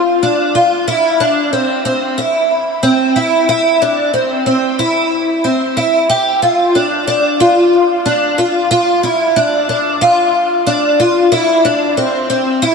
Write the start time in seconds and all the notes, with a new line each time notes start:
Already playing: F4
0.23 D4
0.55 F4
0.88 E4
1.20 D4
1.53 C4
1.85 C4
2.18 E4
2.83 C4
3.16 E4
3.49 E4
3.82 D4
4.14 C4
4.46 C4
4.79 E4
5.44 C4
5.77 E4
6.09 G4
6.42 F4
6.75 D4
7.07 D4
7.40 F4
8.06 D4
8.38 F4
8.71 F4
9.03 E4
9.36 D4
9.69 D4
10.01 F4
10.67 D4
11.00 F4
11.32 E4
11.65 D4
11.97 C4
12.30 C4
12.62 E4